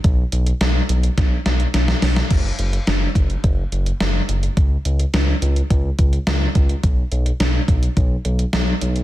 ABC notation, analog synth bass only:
X:1
M:4/4
L:1/8
Q:1/4=106
K:F#dor
V:1 name="Analog synth bass" clef=bass
B,,, B,,, B,,, B,,, B,,, B,,, B,,, B,,, | F,,, F,,, F,,, F,,, F,,, F,,, F,,, F,,, | C,, C,, C,, C,, C,, C,, C,, C,, | B,,, B,,, B,,, B,,, B,,, B,,, B,,, B,,, |]